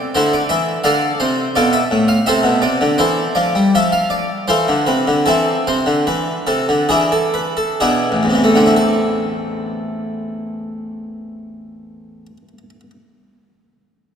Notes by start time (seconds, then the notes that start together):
Already playing: D5
0.15 D3 E4 A4 C5
0.33 D5
0.49 E3 E5
0.84 D3 A4 D5 F5
1.20 C3 C5
1.55 B2 F4 A4 D5
1.73 E5
1.91 A2
2.08 F5
2.26 C3 A4 C5 E5
2.43 B2
2.62 C3 D5
2.81 D3
2.98 E3 E4 A4 C5
3.35 F3 D5
3.55 G3
3.75 F3 E5
3.92 F5
4.10 D5
4.48 E3 F4 A4 C5
4.68 D3
4.87 C3 B4
5.08 D3
5.26 E3 C4 E4 A4
5.67 C3 C5
5.86 D3
6.07 E3 B4
6.47 C3 A4
6.69 D3
6.89 E3 D4 E4 G#4
7.12 A4
7.34 B4
7.57 A4
7.80 B2 D4 E4 G#4
8.12 A1
8.23 E2
8.30 C3
8.34 E3
8.44 A3
8.55 D3 C4
8.66 E4
8.76 A4